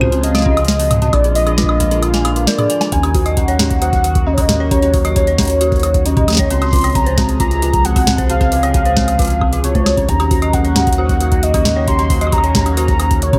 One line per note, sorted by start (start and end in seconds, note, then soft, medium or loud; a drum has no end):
0.00 1.11 C#2 medium
0.00 1.11 C#3 medium
0.00 2.89 F3 medium
0.00 2.89 G#3 medium
0.00 0.07 C4 loud
0.00 1.11 F4 medium
0.00 1.11 G#4 medium
0.00 0.23 C5 medium
0.00 mid tom medium
0.00 high woodblock medium
0.12 0.16 C4 loud
0.12 closed hi-hat soft
0.23 0.33 C4 medium
0.23 1.15 D#5 loud
0.23 closed hi-hat medium
0.35 0.41 F5 loud
0.35 snare medium
0.35 closed hi-hat soft
0.35 high woodblock medium
0.38 snare soft
0.42 0.52 C#4 medium
0.42 kick loud
0.42 snare soft
0.57 closed hi-hat soft
0.57 high woodblock medium
0.65 snare loud
0.65 closed hi-hat soft
0.68 closed hi-hat medium
0.72 closed hi-hat soft
0.79 0.86 C4 medium
0.79 open hi-hat medium
0.91 closed hi-hat medium
0.91 mid tom medium
0.91 high woodblock medium
0.96 mid tom medium
1.02 1.06 C4 loud
1.02 closed hi-hat soft
1.02 mid tom medium
1.07 mid tom medium
1.13 2.47 A#1 medium
1.13 2.90 D3 medium
1.13 2.90 A#3 medium
1.13 1.22 D4 medium
1.13 2.90 F4 medium
1.13 1.35 D5 loud
1.13 kick loud
1.13 closed hi-hat medium
1.13 high woodblock medium
1.24 1.28 D4 medium
1.24 closed hi-hat soft
1.35 1.42 F4 medium
1.35 2.04 D#5 loud
1.35 open hi-hat medium
1.47 1.50 D4 loud
1.47 closed hi-hat soft
1.47 high woodblock medium
1.58 1.64 F4 loud
1.58 snare loud
1.58 closed hi-hat medium
1.64 kick loud
1.69 1.75 D4 medium
1.69 high woodblock medium
1.80 1.86 D4 loud
1.80 closed hi-hat medium
1.80 mid tom medium
1.91 1.95 D4 loud
1.91 closed hi-hat soft
2.03 2.12 D4 medium
2.03 2.47 F5 medium
2.03 closed hi-hat medium
2.03 high woodblock medium
2.14 2.20 G#5 loud
2.14 snare medium
2.14 closed hi-hat soft
2.25 2.31 D4 loud
2.25 closed hi-hat medium
2.25 high woodblock medium
2.36 2.46 F4 medium
2.36 closed hi-hat soft
2.47 2.54 A#4 medium
2.47 2.94 D5 loud
2.47 snare loud
2.47 closed hi-hat medium
2.59 2.68 D4 loud
2.59 closed hi-hat soft
2.59 mid tom loud
2.59 high woodblock medium
2.70 2.79 G#5 medium
2.70 closed hi-hat loud
2.81 2.87 D4 medium
2.81 snare medium
2.81 closed hi-hat soft
2.81 high woodblock medium
2.92 6.48 D#2 medium
2.92 6.47 D#3 medium
2.92 6.47 F#3 medium
2.92 6.47 A#3 medium
2.92 2.98 C#4 loud
2.92 6.47 F#4 medium
2.92 3.30 G#5 loud
2.92 kick loud
2.92 closed hi-hat medium
3.03 3.10 C#4 loud
3.03 closed hi-hat soft
3.03 high woodblock medium
3.15 3.21 F#4 medium
3.15 kick loud
3.15 open hi-hat medium
3.26 3.35 D#5 loud
3.26 closed hi-hat medium
3.26 high woodblock medium
3.30 3.39 G#5 medium
3.37 3.41 C#4 medium
3.37 3.81 F#5 loud
3.37 kick loud
3.37 closed hi-hat medium
3.48 3.54 C#5 medium
3.48 closed hi-hat soft
3.59 3.69 C#4 loud
3.59 snare loud
3.59 closed hi-hat medium
3.59 mid tom medium
3.71 kick loud
3.71 closed hi-hat medium
3.82 3.88 F#4 loud
3.82 4.28 F#5 loud
3.82 closed hi-hat medium
3.93 kick loud
3.93 closed hi-hat soft
4.04 4.10 F#4 medium
4.04 closed hi-hat medium
4.15 kick loud
4.15 closed hi-hat medium
4.27 4.30 C#4 medium
4.27 4.35 D#5 loud
4.34 4.42 C#5 medium
4.38 4.44 C#4 loud
4.38 4.71 D#5 loud
4.38 kick loud
4.38 open hi-hat medium
4.38 high woodblock soft
4.49 4.58 C#4 loud
4.49 snare loud
4.49 closed hi-hat medium
4.49 mid tom medium
4.60 4.66 C#5 loud
4.71 4.78 C#4 loud
4.71 5.13 C#5 loud
4.71 kick loud
4.71 closed hi-hat medium
4.82 4.89 C#4 loud
4.82 closed hi-hat soft
4.94 5.00 F#4 medium
4.94 kick loud
4.94 open hi-hat medium
5.05 5.14 D#5 loud
5.05 closed hi-hat medium
5.05 high woodblock medium
5.16 5.20 C#4 medium
5.16 6.07 C#5 loud
5.16 kick loud
5.16 closed hi-hat medium
5.27 5.33 C#5 medium
5.27 closed hi-hat soft
5.38 5.48 C#4 loud
5.38 kick loud
5.38 snare loud
5.38 closed hi-hat soft
5.38 mid tom medium
5.41 closed hi-hat soft
5.43 closed hi-hat medium
5.45 closed hi-hat medium
5.47 closed hi-hat medium
5.50 closed hi-hat medium
5.61 5.67 F#4 loud
5.61 closed hi-hat medium
5.72 kick loud
5.72 closed hi-hat soft
5.76 closed hi-hat soft
5.80 closed hi-hat soft
5.83 5.89 F#4 medium
5.83 closed hi-hat medium
5.83 high woodblock medium
5.94 kick loud
5.94 closed hi-hat medium
6.06 6.09 C#4 medium
6.06 6.52 D#5 loud
6.06 closed hi-hat medium
6.17 6.23 C#4 loud
6.17 kick loud
6.17 closed hi-hat soft
6.17 mid tom medium
6.28 6.37 C#4 loud
6.28 snare medium
6.28 closed hi-hat medium
6.28 high woodblock medium
6.30 snare medium
6.33 snare medium
6.35 snare medium
6.37 6.45 C#5 loud
6.37 kick loud
6.37 snare loud
6.37 closed hi-hat medium
6.50 10.06 C#2 medium
6.50 10.05 C3 medium
6.50 10.05 F3 medium
6.50 10.05 G#3 medium
6.50 6.57 C4 loud
6.50 10.05 G#4 medium
6.50 6.97 C6 loud
6.50 closed hi-hat medium
6.62 6.68 C4 loud
6.62 closed hi-hat soft
6.62 high woodblock medium
6.73 6.79 F4 medium
6.73 kick loud
6.73 open hi-hat medium
6.76 open hi-hat medium
6.78 open hi-hat soft
6.81 6.93 C#5 loud
6.81 closed hi-hat medium
6.81 open hi-hat soft
6.84 open hi-hat soft
6.84 high woodblock soft
6.87 open hi-hat soft
6.90 open hi-hat soft
6.92 6.99 C4 medium
6.92 7.40 A#5 loud
6.92 kick loud
6.92 closed hi-hat medium
6.92 open hi-hat soft
7.06 7.13 C5 medium
7.06 closed hi-hat soft
7.18 7.27 C4 loud
7.18 kick loud
7.18 snare loud
7.18 closed hi-hat medium
7.18 mid tom medium
7.29 closed hi-hat medium
7.40 7.46 F4 loud
7.40 7.86 A#5 loud
7.40 kick loud
7.40 closed hi-hat medium
7.51 closed hi-hat soft
7.62 7.69 F4 medium
7.62 closed hi-hat medium
7.74 kick loud
7.74 closed hi-hat medium
7.85 7.88 C4 medium
7.85 8.29 F#5 loud
7.85 closed hi-hat medium
7.96 8.02 C4 loud
7.96 kick loud
7.96 open hi-hat medium
7.96 high woodblock soft
8.07 8.16 C4 loud
8.07 snare loud
8.07 closed hi-hat medium
8.07 mid tom medium
8.18 8.25 C5 loud
8.18 kick loud
8.18 closed hi-hat medium
8.30 8.36 C4 loud
8.30 8.71 F5 loud
8.30 closed hi-hat medium
8.41 8.47 C4 loud
8.41 kick loud
8.41 closed hi-hat soft
8.52 8.58 F4 medium
8.52 open hi-hat medium
8.63 8.72 C#5 loud
8.63 closed hi-hat medium
8.63 high woodblock soft
8.74 8.78 C4 medium
8.74 9.60 F5 loud
8.74 kick loud
8.74 closed hi-hat medium
8.85 8.92 C5 medium
8.85 closed hi-hat soft
8.97 9.06 C4 loud
8.97 kick loud
8.97 snare loud
8.97 mid tom medium
9.08 closed hi-hat medium
9.08 high woodblock soft
9.19 9.25 F4 loud
9.19 kick loud
9.19 closed hi-hat medium
9.22 closed hi-hat medium
9.25 closed hi-hat medium
9.27 closed hi-hat soft
9.30 closed hi-hat soft
9.41 9.45 C4 medium
9.41 kick loud
9.41 high woodblock medium
9.53 9.62 F4 loud
9.53 closed hi-hat medium
9.64 9.70 C4 medium
9.64 10.10 C#5 loud
9.64 closed hi-hat medium
9.75 9.81 C5 medium
9.75 kick loud
9.75 closed hi-hat soft
9.75 mid tom medium
9.86 9.90 C4 medium
9.86 snare loud
9.86 high woodblock medium
9.97 10.04 C#4 medium
9.97 kick loud
9.97 closed hi-hat medium
10.09 13.39 D#2 medium
10.09 13.39 C#3 medium
10.09 13.39 F#3 medium
10.09 13.39 A#3 medium
10.09 10.15 C#4 loud
10.09 11.86 D#4 medium
10.09 13.39 F#4 medium
10.09 10.55 A#5 loud
10.09 kick loud
10.09 closed hi-hat medium
10.20 10.26 C#4 loud
10.20 closed hi-hat soft
10.20 high woodblock medium
10.31 10.37 F#4 medium
10.31 kick loud
10.31 open hi-hat medium
10.42 10.51 D#5 loud
10.42 closed hi-hat soft
10.42 high woodblock soft
10.53 10.57 C#4 medium
10.53 10.98 F#5 loud
10.53 kick loud
10.53 closed hi-hat medium
10.65 10.71 C#5 medium
10.65 closed hi-hat soft
10.76 10.85 C#4 loud
10.76 snare loud
10.76 closed hi-hat medium
10.76 mid tom medium
10.87 10.91 C#4 medium
10.87 kick loud
10.87 closed hi-hat medium
10.93 closed hi-hat medium
10.98 11.04 F#4 loud
10.98 11.45 F#5 loud
11.09 kick loud
11.09 closed hi-hat soft
11.21 11.27 F#4 medium
11.21 closed hi-hat medium
11.32 kick loud
11.32 closed hi-hat medium
11.43 11.88 D#5 loud
11.43 closed hi-hat medium
11.54 11.60 C#4 loud
11.54 kick loud
11.54 open hi-hat medium
11.54 high woodblock soft
11.65 11.75 C#4 loud
11.65 snare loud
11.65 closed hi-hat medium
11.65 mid tom loud
11.76 11.83 C#5 loud
11.88 11.94 C#4 loud
11.88 13.39 C#4 medium
11.88 12.34 C6 loud
11.88 kick loud
11.88 closed hi-hat medium
11.99 12.05 C#4 loud
11.99 closed hi-hat soft
12.10 12.16 F#4 medium
12.10 kick loud
12.10 open hi-hat medium
12.21 12.31 D#5 loud
12.21 closed hi-hat medium
12.21 high woodblock soft
12.27 high woodblock soft
12.32 12.36 C#4 medium
12.32 12.77 A#5 loud
12.32 kick loud
12.32 closed hi-hat medium
12.32 high woodblock soft
12.38 high woodblock soft
12.44 12.50 C#5 medium
12.44 closed hi-hat soft
12.55 12.64 C#4 loud
12.55 kick loud
12.55 snare loud
12.55 closed hi-hat medium
12.55 mid tom medium
12.66 12.70 C#4 medium
12.66 closed hi-hat soft
12.66 high woodblock soft
12.77 12.83 F#4 loud
12.77 13.24 A#5 loud
12.77 closed hi-hat medium
12.88 kick loud
12.88 closed hi-hat soft
13.00 13.06 F#4 medium
13.00 closed hi-hat medium
13.00 high woodblock medium
13.11 kick loud
13.11 closed hi-hat medium
13.22 13.39 C#5 loud
13.22 closed hi-hat medium
13.33 13.39 C#4 loud
13.33 kick loud
13.33 closed hi-hat soft
13.33 mid tom loud